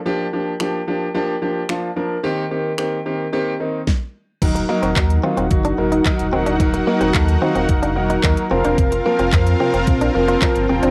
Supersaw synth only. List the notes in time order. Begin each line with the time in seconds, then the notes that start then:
4.42 D#4 F#4 A#4 F#5
8.51 C4 F4 F5
10.69 G5